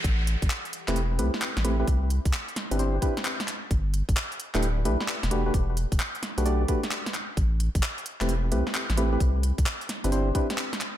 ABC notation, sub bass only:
X:1
M:4/4
L:1/16
Q:"Swing 16ths" 1/4=131
K:Ador
V:1 name="Sub bass" clef=bass
A,,,3 A,,, z3 E,,,3 C,, z2 A,,,3 | C,,3 C,, z3 G,,,3 z6 | G,,,3 G,,, z3 D,,,3 B,,, z2 E,,,3 | E,,,3 E,,, z3 B,,,3 z6 |
A,,,3 A,,, z3 E,,,3 C,, z2 A,,,3 | C,,3 C,, z3 G,,,3 z6 |]